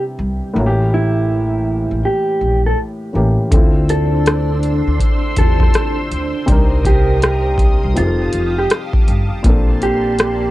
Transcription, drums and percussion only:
3.52 kick, closed hi-hat
3.89 closed hi-hat
4.26 cross-stick, closed hi-hat
4.63 closed hi-hat
5.00 kick, closed hi-hat
5.36 kick, closed hi-hat
5.60 kick, cross-stick
5.74 cross-stick, closed hi-hat
6.11 closed hi-hat
6.48 kick, closed hi-hat
6.85 kick, closed hi-hat
7.22 cross-stick, closed hi-hat
7.58 kick, closed hi-hat
7.97 closed hi-hat
8.33 closed hi-hat
8.59 cross-stick
8.70 cross-stick, closed hi-hat
8.93 kick
9.08 closed hi-hat
9.44 kick, closed hi-hat
9.82 closed hi-hat
10.19 cross-stick, closed hi-hat

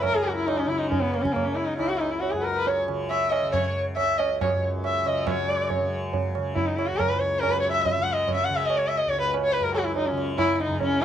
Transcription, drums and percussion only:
0.03 tabla na, tabla ge
0.48 tabla na
0.92 tabla tin, tabla ge
1.14 tabla na
1.25 tabla ke
1.36 tabla na, tabla ge
1.79 tabla na
2.01 tabla na
2.23 tabla tin
2.67 tabla tin
2.88 tabla na
3.11 tabla na
3.32 tabla na
3.54 tabla na, tabla ge
3.97 tabla na
4.20 tabla na
4.41 tabla na, tabla ge
4.84 tabla na
5.06 tabla na
5.27 tabla na, tabla ge
5.70 tabla tin, tabla ge
6.13 tabla tin, tabla ge
6.35 tabla na
6.56 tabla tin, tabla ge
6.79 tabla na
7.00 tabla na, tabla ge
7.43 tabla na
7.85 tabla tin, tabla ge
8.28 tabla na, tabla ge
8.70 tabla na
9.13 tabla tin
9.34 tabla na
9.54 tabla tin
9.75 tabla na
9.96 tabla tin
10.18 tabla na
10.38 tabla na, tabla ge
10.60 tabla te
10.71 tabla ge
10.81 tabla tin, tabla ge

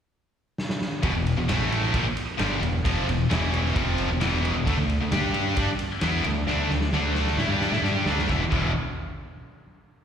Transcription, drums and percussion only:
0.58 snare
0.70 snare
0.82 snare
1.03 kick, ride
1.26 ride
1.49 snare, ride
1.72 ride
1.83 snare
1.94 kick, ride
2.17 ride
2.39 snare, ride
2.63 ride
2.85 kick, ride
3.09 ride
3.31 snare, ride
3.54 ride
3.66 snare
3.76 kick, ride
3.98 ride
4.21 snare, ride
4.45 ride
4.67 kick, ride
4.89 ride
5.12 snare, ride
5.34 ride
5.46 snare
5.57 kick, ride
5.79 ride
6.01 snare, ride
6.24 ride
6.47 snare
6.70 snare
6.81 snare
6.92 snare
7.15 snare
7.27 snare
7.38 snare
7.61 snare
7.73 snare
7.85 snare
8.06 snare
8.19 snare
8.29 kick, snare
8.52 kick, crash

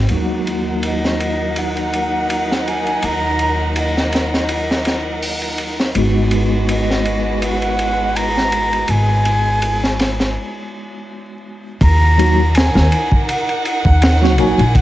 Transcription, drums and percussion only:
0.09 ride
0.47 ride
0.83 ride
1.05 snare
1.20 ride
1.56 ride
1.77 ride
1.93 ride
2.30 ride
2.52 snare
2.67 ride
2.87 ride
3.02 ride
3.39 ride
3.76 ride
3.97 snare
4.12 snare, ride
4.34 snare
4.49 ride
4.71 snare
4.85 snare, ride
5.22 open hi-hat
5.42 ride
5.58 ride
5.80 snare
5.95 ride
6.31 ride
6.69 ride
6.91 snare
7.05 ride
7.42 ride
7.62 ride
7.79 ride
8.16 ride
8.37 snare
8.52 ride
8.73 ride
8.88 ride
9.25 ride
9.62 ride
9.84 snare
9.99 snare, ride
10.20 snare
11.81 kick, ride
12.19 ride
12.55 snare, ride
12.76 snare
12.92 ride
13.12 kick
13.29 ride
13.49 ride
13.65 ride
13.85 kick
14.02 snare, ride
14.24 snare
14.38 ride
14.59 ride
14.75 kick, ride

